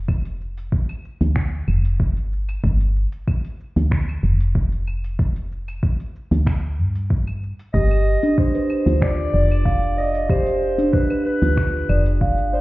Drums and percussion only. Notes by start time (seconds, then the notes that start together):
0.08 kick, cabasa, claves
0.25 open hi-hat, cabasa
0.41 cabasa
0.57 open hi-hat, cabasa
0.72 kick, cabasa
0.89 open hi-hat, claves
1.05 cabasa
1.21 open hi-hat, cabasa
1.36 finger snap, kick, cabasa
1.53 cabasa
1.68 cabasa, claves
1.85 open hi-hat, cabasa
2.00 kick, cabasa
2.17 open hi-hat, cabasa
2.33 cabasa
2.49 open hi-hat, cabasa, claves
2.64 kick, cabasa
2.81 open hi-hat, cabasa
2.96 cabasa
3.12 open hi-hat, cabasa
3.28 kick, cabasa, claves
3.45 open hi-hat
3.60 cabasa
3.77 open hi-hat, cabasa
3.91 finger snap, kick, cabasa
4.09 cabasa, claves
4.25 cabasa
4.41 open hi-hat, cabasa
4.55 kick, cabasa
4.72 open hi-hat, cabasa
4.87 cabasa, claves
5.04 open hi-hat, cabasa
5.19 kick, cabasa
5.36 open hi-hat, cabasa
5.52 cabasa
5.68 open hi-hat, cabasa, claves
5.83 kick, cabasa
6.00 open hi-hat
6.16 cabasa
6.32 open hi-hat, cabasa
6.47 finger snap, kick, cabasa, claves
6.65 cabasa
6.80 cabasa
6.95 open hi-hat, cabasa
7.10 kick, cabasa
7.27 open hi-hat, cabasa, claves
7.43 cabasa
7.59 open hi-hat, cabasa
7.74 kick, cabasa
7.91 open hi-hat, cabasa, claves
8.07 cabasa
8.23 open hi-hat, cabasa
8.38 kick, cabasa
8.55 open hi-hat
8.70 cabasa, claves
8.87 open hi-hat, cabasa
9.02 finger snap, kick, cabasa
9.20 cabasa
9.35 cabasa
9.51 open hi-hat, cabasa, claves
9.66 kick, cabasa
9.83 open hi-hat, cabasa
9.99 cabasa
10.15 open hi-hat, cabasa
10.30 kick, cabasa, claves
10.47 open hi-hat, cabasa
10.63 cabasa
10.79 open hi-hat, cabasa
10.93 kick, cabasa
11.10 open hi-hat, claves
11.26 cabasa
11.42 open hi-hat, cabasa
11.57 finger snap, kick, cabasa
11.75 cabasa
11.89 cabasa, claves
12.06 open hi-hat, cabasa
12.21 kick, cabasa
12.38 open hi-hat, cabasa
12.54 cabasa